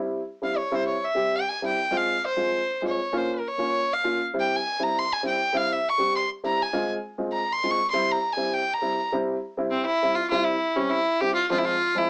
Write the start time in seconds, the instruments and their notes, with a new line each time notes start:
Already playing: upright piano G3 C4 E4
0.42 upright piano G3 C4 E4, violin F5
0.57 violin C#5
0.71 upright piano G3 C4 E4, violin C5
0.88 violin C#5
1.05 violin E5
1.15 upright piano G3 C4 G4
1.36 violin G5
1.49 violin G#5
1.62 upright piano G3 C4 E4
1.66 violin G5
1.91 upright piano G#3 C4 F4
1.97 violin F5
2.26 violin C5
2.36 upright piano G#3 C4 F4
2.82 upright piano G#3 C4 F4
2.88 violin C#5
3.12 upright piano A#3 C#4 F4
3.17 violin C5
3.34 violin A#4
3.48 violin C#5
3.58 upright piano A#3 C#4 F4
3.93 violin F5
4.04 upright piano A#3 C#4 F4
4.34 upright piano G3 C4 E4
4.40 violin G5
4.56 violin G#5
4.79 upright piano G3 C4 E4, violin A#5
4.99 violin C6
5.13 violin G#5
5.23 upright piano G3 C4 E4
5.27 violin G5
5.53 upright piano G3 C4 E4
5.57 violin F5
5.73 violin E5
5.89 violin C#6
5.98 upright piano G3 C4 G4
6.16 violin C6
6.44 upright piano G3 C4 E4, violin A#5
6.62 violin G#5
6.73 upright piano G#3 C4 F4
7.18 upright piano G#3 C4 F4
7.33 violin A#5
7.53 violin C6
7.64 upright piano G#3 C4 F4
7.71 violin C#6
7.91 upright piano G3 C4 E4, violin C6
8.12 violin A#5
8.33 violin G#5
8.37 upright piano G3 C4 E4
8.54 violin G5
8.74 violin A#5
8.82 upright piano G3 C4 E4
9.12 upright piano G3 C4 E4
9.57 upright piano G3 C4 E4
9.71 violin C4
9.86 violin E4
10.03 upright piano G3 C4 E4
10.15 violin F4
10.30 upright piano G3 C4 E4, violin F4
10.44 violin E4
10.76 upright piano G3 C4 G4, violin C#4
10.90 violin E4
11.21 upright piano G3 C4 E4, violin G4
11.35 violin F4
11.50 upright piano F3 G#3 C4, violin F4
11.58 violin E4
11.65 violin F4
11.95 upright piano F3 G#3 C4, violin E4